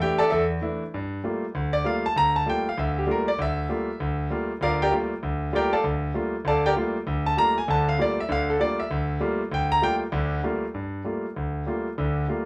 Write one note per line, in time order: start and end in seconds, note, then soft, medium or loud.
0.02 0.21 E3 medium
0.02 0.21 A3 medium
0.02 0.22 D4 soft
0.02 0.22 E4 medium
0.02 0.20 G4 medium
0.02 0.20 G5 medium
0.18 0.30 A4 medium
0.18 0.31 D5 medium
0.18 0.29 E5 medium
0.18 0.30 A5 medium
0.30 0.58 E2 medium
0.30 0.43 E4 medium
0.30 0.43 A4 medium
0.30 0.42 E5 medium
0.62 0.82 E3 medium
0.62 0.82 A3 soft
0.62 0.82 D4 soft
0.62 0.82 E4 medium
0.94 1.20 G2 medium
1.24 1.44 G3 soft
1.24 1.44 A3 soft
1.24 1.44 A#3 soft
1.24 1.44 F4 soft
1.55 1.81 D2 medium
1.73 1.84 D5 medium
1.84 2.05 G3 medium
1.84 2.05 A3 soft
1.84 2.05 A#3 medium
1.84 2.05 F4 medium
1.84 2.04 F5 medium
2.06 2.16 A5 medium
2.16 2.42 D2 medium
2.16 2.35 A#5 loud
2.36 2.46 A5 medium
2.46 2.66 G3 soft
2.46 2.66 A3 soft
2.46 2.67 A#3 soft
2.46 2.67 F4 soft
2.46 2.66 G5 medium
2.69 2.78 F5 medium
2.78 3.04 D2 medium
2.78 2.97 E5 medium
2.98 3.08 G4 medium
3.07 3.27 G3 medium
3.07 3.27 A3 medium
3.07 3.28 A#3 medium
3.07 3.28 F4 medium
3.11 3.28 A#4 medium
3.28 3.38 D5 medium
3.39 3.65 D2 medium
3.39 4.28 E5 medium
3.69 3.89 G3 soft
3.69 3.89 A3 soft
3.69 3.89 A#3 soft
3.69 3.90 F4 medium
4.00 4.26 D2 medium
4.30 4.50 G3 medium
4.30 4.51 A3 soft
4.30 4.51 A#3 soft
4.30 4.51 F4 medium
4.61 4.87 D2 medium
4.61 4.81 F4 medium
4.61 4.81 A#4 medium
4.61 4.81 D5 medium
4.61 4.80 F5 medium
4.82 4.92 G4 medium
4.82 4.93 A#4 medium
4.82 4.93 D5 medium
4.82 4.92 G5 medium
4.92 5.12 G3 medium
4.92 5.12 A3 soft
4.92 5.12 A#3 soft
4.92 5.12 F4 medium
5.23 5.49 D2 medium
5.52 5.73 G3 medium
5.52 5.73 A3 medium
5.52 5.73 A#3 soft
5.52 5.73 F4 medium
5.52 5.73 G4 medium
5.52 5.73 A#4 medium
5.52 5.71 D5 medium
5.52 5.73 G5 medium
5.73 5.84 A4 medium
5.73 5.84 D5 medium
5.73 5.84 F5 medium
5.73 5.84 A5 medium
5.84 6.10 D2 medium
6.14 6.34 G3 soft
6.14 6.35 A3 soft
6.14 6.35 A#3 soft
6.14 6.35 F4 medium
6.45 6.71 D2 medium
6.45 6.65 A4 medium
6.45 6.65 D5 medium
6.45 6.65 F5 medium
6.45 6.65 A5 medium
6.66 6.73 G4 medium
6.66 6.73 A#4 medium
6.66 6.73 D5 medium
6.66 6.72 G5 medium
6.76 6.96 G3 medium
6.76 6.96 A3 medium
6.76 6.96 A#3 soft
6.76 6.96 F4 medium
7.07 7.33 D2 medium
7.26 7.37 A5 medium
7.37 7.57 G3 soft
7.37 7.57 A3 medium
7.37 7.58 A#3 soft
7.37 7.58 F4 medium
7.37 7.56 A#5 loud
7.58 7.68 G#5 medium
7.68 7.94 D2 medium
7.68 7.94 D3 medium
7.68 7.88 A5 medium
7.89 7.99 F5 medium
7.98 8.19 G3 medium
7.98 8.19 A3 soft
7.98 8.19 A#3 medium
7.98 8.19 F4 medium
7.98 8.18 D5 medium
8.20 8.30 E5 medium
8.29 8.55 D2 medium
8.29 8.55 D3 medium
8.29 8.49 F5 loud
8.50 8.60 A4 medium
8.60 8.80 G3 medium
8.60 8.80 A3 soft
8.60 8.80 A#3 soft
8.60 8.80 F4 medium
8.60 8.79 D5 medium
8.80 9.18 E5 medium
8.91 9.17 D2 medium
9.20 9.41 G3 medium
9.20 9.41 A3 medium
9.20 9.41 A#3 medium
9.20 9.41 F4 medium
9.52 9.78 D2 medium
9.52 9.71 G5 medium
9.72 9.82 A#5 loud
9.82 10.02 G3 soft
9.82 10.02 A3 soft
9.82 10.02 A#3 soft
9.82 10.02 F4 medium
9.82 9.95 G5 loud
10.12 10.39 D2 medium
10.12 10.39 D3 medium
10.44 10.64 G3 medium
10.44 10.64 A3 medium
10.44 10.64 A#3 medium
10.44 10.64 F4 medium
10.74 11.01 G2 medium
11.04 11.25 G3 soft
11.04 11.25 A3 soft
11.04 11.25 A#3 soft
11.04 11.25 F4 soft
11.36 11.62 D2 medium
11.66 11.87 G3 soft
11.66 11.87 A3 soft
11.66 11.87 A#3 soft
11.66 11.87 F4 soft
11.98 12.24 D2 medium
11.98 12.24 D3 medium
12.28 12.45 G3 soft
12.28 12.45 A3 soft
12.28 12.45 A#3 soft
12.28 12.45 F4 soft